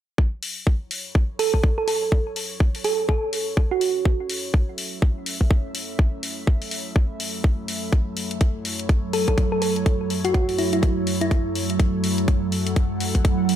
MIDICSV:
0, 0, Header, 1, 5, 480
1, 0, Start_track
1, 0, Key_signature, 3, "minor"
1, 0, Tempo, 483871
1, 182, Time_signature, 4, 2, 24, 8
1, 13449, End_track
2, 0, Start_track
2, 0, Title_t, "Analog synth pad"
2, 0, Program_c, 0, 89
2, 180, Note_on_c, 0, 54, 77
2, 594, Note_on_c, 0, 64, 75
2, 652, Note_on_c, 0, 73, 76
2, 834, Note_on_c, 0, 69, 71
2, 4493, Note_on_c, 0, 76, 80
2, 4516, Note_off_c, 0, 73, 0
2, 8331, Note_on_c, 0, 73, 79
2, 8356, Note_off_c, 0, 76, 0
2, 12171, Note_on_c, 0, 78, 78
2, 12195, Note_off_c, 0, 73, 0
2, 13449, Note_off_c, 0, 54, 0
2, 13449, Note_off_c, 0, 64, 0
2, 13449, Note_off_c, 0, 69, 0
2, 13449, Note_off_c, 0, 78, 0
2, 13449, End_track
3, 0, Start_track
3, 0, Title_t, "Ambient pad"
3, 0, Program_c, 1, 92
3, 180, Note_on_c, 1, 54, 78
3, 181, Note_on_c, 1, 66, 69
3, 181, Note_on_c, 1, 73, 83
3, 7850, Note_off_c, 1, 73, 0
3, 7861, Note_on_c, 1, 76, 86
3, 13449, Note_off_c, 1, 54, 0
3, 13449, Note_off_c, 1, 66, 0
3, 13449, Note_off_c, 1, 76, 0
3, 13449, End_track
4, 0, Start_track
4, 0, Title_t, "Synth pluck"
4, 0, Program_c, 2, 84
4, 1381, Note_on_c, 2, 69, 82
4, 1473, Note_off_c, 2, 69, 0
4, 1523, Note_on_c, 2, 69, 70
4, 1586, Note_off_c, 2, 69, 0
4, 1764, Note_on_c, 2, 69, 79
4, 1826, Note_off_c, 2, 69, 0
4, 1861, Note_on_c, 2, 69, 70
4, 1953, Note_off_c, 2, 69, 0
4, 2822, Note_on_c, 2, 69, 82
4, 3032, Note_off_c, 2, 69, 0
4, 3062, Note_on_c, 2, 69, 89
4, 3272, Note_off_c, 2, 69, 0
4, 3685, Note_on_c, 2, 66, 82
4, 4347, Note_off_c, 2, 66, 0
4, 9061, Note_on_c, 2, 69, 88
4, 9153, Note_off_c, 2, 69, 0
4, 9206, Note_on_c, 2, 69, 71
4, 9268, Note_off_c, 2, 69, 0
4, 9444, Note_on_c, 2, 69, 80
4, 9506, Note_off_c, 2, 69, 0
4, 9540, Note_on_c, 2, 69, 75
4, 9632, Note_off_c, 2, 69, 0
4, 10163, Note_on_c, 2, 66, 83
4, 10226, Note_off_c, 2, 66, 0
4, 10261, Note_on_c, 2, 66, 75
4, 10353, Note_off_c, 2, 66, 0
4, 10501, Note_on_c, 2, 64, 82
4, 10593, Note_off_c, 2, 64, 0
4, 10644, Note_on_c, 2, 64, 70
4, 10706, Note_off_c, 2, 64, 0
4, 11124, Note_on_c, 2, 64, 85
4, 11604, Note_off_c, 2, 64, 0
4, 13449, End_track
5, 0, Start_track
5, 0, Title_t, "Drums"
5, 181, Note_on_c, 9, 36, 104
5, 280, Note_off_c, 9, 36, 0
5, 422, Note_on_c, 9, 46, 92
5, 521, Note_off_c, 9, 46, 0
5, 661, Note_on_c, 9, 36, 97
5, 761, Note_off_c, 9, 36, 0
5, 902, Note_on_c, 9, 46, 95
5, 1001, Note_off_c, 9, 46, 0
5, 1142, Note_on_c, 9, 36, 104
5, 1241, Note_off_c, 9, 36, 0
5, 1382, Note_on_c, 9, 46, 95
5, 1481, Note_off_c, 9, 46, 0
5, 1525, Note_on_c, 9, 36, 53
5, 1622, Note_off_c, 9, 36, 0
5, 1622, Note_on_c, 9, 36, 109
5, 1721, Note_off_c, 9, 36, 0
5, 1862, Note_on_c, 9, 46, 92
5, 1961, Note_off_c, 9, 46, 0
5, 2102, Note_on_c, 9, 36, 107
5, 2201, Note_off_c, 9, 36, 0
5, 2342, Note_on_c, 9, 46, 99
5, 2441, Note_off_c, 9, 46, 0
5, 2582, Note_on_c, 9, 36, 100
5, 2681, Note_off_c, 9, 36, 0
5, 2725, Note_on_c, 9, 46, 57
5, 2821, Note_off_c, 9, 46, 0
5, 2821, Note_on_c, 9, 46, 96
5, 2921, Note_off_c, 9, 46, 0
5, 3062, Note_on_c, 9, 36, 108
5, 3161, Note_off_c, 9, 36, 0
5, 3302, Note_on_c, 9, 46, 100
5, 3401, Note_off_c, 9, 46, 0
5, 3542, Note_on_c, 9, 36, 117
5, 3641, Note_off_c, 9, 36, 0
5, 3781, Note_on_c, 9, 46, 96
5, 3880, Note_off_c, 9, 46, 0
5, 4022, Note_on_c, 9, 36, 113
5, 4121, Note_off_c, 9, 36, 0
5, 4261, Note_on_c, 9, 46, 100
5, 4360, Note_off_c, 9, 46, 0
5, 4502, Note_on_c, 9, 36, 105
5, 4601, Note_off_c, 9, 36, 0
5, 4741, Note_on_c, 9, 46, 100
5, 4840, Note_off_c, 9, 46, 0
5, 4982, Note_on_c, 9, 36, 107
5, 5081, Note_off_c, 9, 36, 0
5, 5221, Note_on_c, 9, 46, 102
5, 5320, Note_off_c, 9, 46, 0
5, 5365, Note_on_c, 9, 36, 57
5, 5462, Note_off_c, 9, 36, 0
5, 5462, Note_on_c, 9, 36, 116
5, 5561, Note_off_c, 9, 36, 0
5, 5701, Note_on_c, 9, 46, 97
5, 5800, Note_off_c, 9, 46, 0
5, 5941, Note_on_c, 9, 36, 111
5, 6040, Note_off_c, 9, 36, 0
5, 6180, Note_on_c, 9, 46, 98
5, 6279, Note_off_c, 9, 46, 0
5, 6422, Note_on_c, 9, 36, 99
5, 6521, Note_off_c, 9, 36, 0
5, 6564, Note_on_c, 9, 46, 56
5, 6660, Note_off_c, 9, 46, 0
5, 6660, Note_on_c, 9, 46, 96
5, 6759, Note_off_c, 9, 46, 0
5, 6902, Note_on_c, 9, 36, 112
5, 7001, Note_off_c, 9, 36, 0
5, 7142, Note_on_c, 9, 46, 100
5, 7241, Note_off_c, 9, 46, 0
5, 7382, Note_on_c, 9, 36, 117
5, 7481, Note_off_c, 9, 36, 0
5, 7622, Note_on_c, 9, 46, 92
5, 7721, Note_off_c, 9, 46, 0
5, 7862, Note_on_c, 9, 36, 105
5, 7862, Note_on_c, 9, 42, 57
5, 7961, Note_off_c, 9, 36, 0
5, 7961, Note_off_c, 9, 42, 0
5, 8101, Note_on_c, 9, 46, 96
5, 8200, Note_off_c, 9, 46, 0
5, 8244, Note_on_c, 9, 42, 45
5, 8340, Note_off_c, 9, 42, 0
5, 8340, Note_on_c, 9, 42, 55
5, 8342, Note_on_c, 9, 36, 99
5, 8440, Note_off_c, 9, 42, 0
5, 8441, Note_off_c, 9, 36, 0
5, 8581, Note_on_c, 9, 46, 97
5, 8680, Note_off_c, 9, 46, 0
5, 8724, Note_on_c, 9, 42, 45
5, 8821, Note_off_c, 9, 42, 0
5, 8821, Note_on_c, 9, 36, 107
5, 8821, Note_on_c, 9, 42, 55
5, 8920, Note_off_c, 9, 36, 0
5, 8920, Note_off_c, 9, 42, 0
5, 9061, Note_on_c, 9, 46, 95
5, 9160, Note_off_c, 9, 46, 0
5, 9204, Note_on_c, 9, 36, 52
5, 9205, Note_on_c, 9, 42, 46
5, 9301, Note_off_c, 9, 36, 0
5, 9301, Note_on_c, 9, 36, 112
5, 9302, Note_off_c, 9, 42, 0
5, 9302, Note_on_c, 9, 42, 60
5, 9400, Note_off_c, 9, 36, 0
5, 9401, Note_off_c, 9, 42, 0
5, 9541, Note_on_c, 9, 46, 96
5, 9640, Note_off_c, 9, 46, 0
5, 9685, Note_on_c, 9, 42, 44
5, 9781, Note_on_c, 9, 36, 102
5, 9782, Note_off_c, 9, 42, 0
5, 9782, Note_on_c, 9, 42, 58
5, 9880, Note_off_c, 9, 36, 0
5, 9881, Note_off_c, 9, 42, 0
5, 10022, Note_on_c, 9, 46, 93
5, 10121, Note_off_c, 9, 46, 0
5, 10164, Note_on_c, 9, 42, 50
5, 10261, Note_off_c, 9, 42, 0
5, 10261, Note_on_c, 9, 36, 97
5, 10261, Note_on_c, 9, 42, 57
5, 10360, Note_off_c, 9, 36, 0
5, 10360, Note_off_c, 9, 42, 0
5, 10404, Note_on_c, 9, 46, 54
5, 10500, Note_off_c, 9, 46, 0
5, 10500, Note_on_c, 9, 46, 89
5, 10599, Note_off_c, 9, 46, 0
5, 10644, Note_on_c, 9, 42, 48
5, 10741, Note_off_c, 9, 42, 0
5, 10741, Note_on_c, 9, 36, 101
5, 10741, Note_on_c, 9, 42, 59
5, 10840, Note_off_c, 9, 36, 0
5, 10840, Note_off_c, 9, 42, 0
5, 10981, Note_on_c, 9, 46, 93
5, 11080, Note_off_c, 9, 46, 0
5, 11124, Note_on_c, 9, 42, 47
5, 11221, Note_on_c, 9, 36, 105
5, 11222, Note_off_c, 9, 42, 0
5, 11222, Note_on_c, 9, 42, 60
5, 11320, Note_off_c, 9, 36, 0
5, 11321, Note_off_c, 9, 42, 0
5, 11462, Note_on_c, 9, 46, 91
5, 11561, Note_off_c, 9, 46, 0
5, 11605, Note_on_c, 9, 42, 50
5, 11701, Note_on_c, 9, 36, 97
5, 11702, Note_off_c, 9, 42, 0
5, 11702, Note_on_c, 9, 42, 64
5, 11800, Note_off_c, 9, 36, 0
5, 11801, Note_off_c, 9, 42, 0
5, 11941, Note_on_c, 9, 46, 93
5, 12040, Note_off_c, 9, 46, 0
5, 12085, Note_on_c, 9, 42, 50
5, 12181, Note_off_c, 9, 42, 0
5, 12181, Note_on_c, 9, 36, 97
5, 12181, Note_on_c, 9, 42, 57
5, 12280, Note_off_c, 9, 36, 0
5, 12281, Note_off_c, 9, 42, 0
5, 12421, Note_on_c, 9, 46, 89
5, 12520, Note_off_c, 9, 46, 0
5, 12564, Note_on_c, 9, 42, 48
5, 12661, Note_off_c, 9, 42, 0
5, 12661, Note_on_c, 9, 36, 105
5, 12661, Note_on_c, 9, 42, 62
5, 12760, Note_off_c, 9, 36, 0
5, 12760, Note_off_c, 9, 42, 0
5, 12901, Note_on_c, 9, 46, 94
5, 13000, Note_off_c, 9, 46, 0
5, 13044, Note_on_c, 9, 36, 51
5, 13044, Note_on_c, 9, 42, 49
5, 13141, Note_off_c, 9, 36, 0
5, 13141, Note_on_c, 9, 36, 106
5, 13142, Note_off_c, 9, 42, 0
5, 13142, Note_on_c, 9, 42, 64
5, 13240, Note_off_c, 9, 36, 0
5, 13241, Note_off_c, 9, 42, 0
5, 13382, Note_on_c, 9, 46, 91
5, 13449, Note_off_c, 9, 46, 0
5, 13449, End_track
0, 0, End_of_file